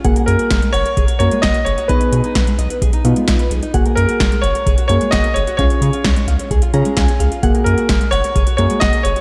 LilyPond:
<<
  \new Staff \with { instrumentName = "Grand piano" } { \time 4/4 \key fis \major \tempo 4 = 130 r8 ais'4 cis''4 cis''8 dis''8 cis''8 | b'4. r2 r8 | r8 ais'4 cis''4 cis''8 dis''8 cis''8 | cis''4. r2 r8 |
r8 ais'4 cis''4 cis''8 dis''8 cis''8 | }
  \new Staff \with { instrumentName = "Nylon-string guitar" } { \time 4/4 \key fis \major fis''16 ais'16 gis'16 fis'16 ais16 gis16 fis''16 ais'16 gis'16 fis'16 ais16 gis16 fis''16 ais'16 gis'16 fis'16 | dis''16 b'16 gis'16 dis'16 b16 gis16 dis''16 b'16 gis'16 dis'16 b16 gis16 dis''16 b'16 gis'16 dis'16 | fis''16 ais'16 gis'16 fis'16 ais16 gis16 fis''16 ais'16 gis'16 fis'16 ais16 gis16 fis''16 ais'16 gis'16 fis'16 | eis''16 cis''16 gis'16 eis'16 cis'16 gis16 eis''16 cis''16 gis'16 eis'16 cis'16 gis16 eis''16 cis''16 gis'16 eis'16 |
fis''16 ais'16 gis'16 fis'16 ais16 gis16 fis''16 ais'16 gis'16 fis'16 ais16 gis16 fis''16 ais'16 gis'16 fis'16 | }
  \new Staff \with { instrumentName = "Synth keys" } { \time 4/4 \key fis \major << { r1 | r1 | r1 | r2 r8 ais''8 gis''8 eis''8 |
r1 | } \\ { <ais fis' gis'>4 r4. <ais fis' ais'>4 r8 | <b dis' gis'>4 r4. <b dis' eis'>4 r8 | <ais fis' gis'>4 r4. <ais fis' gis'>4 r8 | <cis' eis' gis'>4 r4. <cis' eis' gis'>4 r8 |
<ais fis' gis'>4 r4. <ais fis' gis'>4 r8 | } >> }
  \new Staff \with { instrumentName = "Analog synth bass" } { \clef bass \time 4/4 \key fis \major fis,,16 r16 fis,16 r16 fis,,16 r16 fis,,16 r16 fis,,16 r16 fis,16 r16 fis,,16 r16 fis,,16 r16 | b,,16 r16 b,16 r16 b,,16 r16 b,,16 r16 b,,16 r16 b,16 r16 b,,16 r16 b,,16 r16 | fis,,16 r16 fis,16 r16 fis,,16 r16 fis,,16 r16 fis,,16 r16 fis,16 r16 fis,,16 r16 fis,,16 r16 | cis,16 r16 cis16 r16 cis,16 r16 cis,16 r16 cis,16 r16 cis16 r16 cis,16 r16 cis,16 r16 |
fis,,16 r16 fis,16 r16 fis,,16 r16 fis,,16 r16 fis,,16 r16 fis,16 r16 fis,,16 r16 fis,,16 r16 | }
  \new DrumStaff \with { instrumentName = "Drums" } \drummode { \time 4/4 <hh bd>16 hh16 hh16 hh16 <hh bd sn>16 hh16 hh16 hh16 <hh bd>16 hh16 hh16 hh16 <hh bd sn>16 hh16 hh16 hh16 | <hh bd>16 hh16 hh16 hh16 <hh bd sn>16 hh16 hh16 hh16 <hh bd>16 hh16 hh16 hh16 <hh bd sn>16 hh16 hh16 hh16 | <hh bd>16 hh16 hh16 hh16 <hh bd sn>16 hh16 hh16 hh16 <hh bd>16 hh16 hh16 hh16 <hh bd sn>16 hh16 hh16 hh16 | <hh bd>16 hh16 hh16 hh16 <hh bd sn>16 hh16 hh16 hh16 <hh bd>16 hh16 hh16 hh16 <hh bd sn>16 hh16 hh16 hh16 |
<hh bd>16 hh16 hh16 hh16 <hh bd sn>16 hh16 hh16 hh16 <hh bd>16 hh16 hh16 hh16 <hh bd sn>16 hh16 hh16 hh16 | }
>>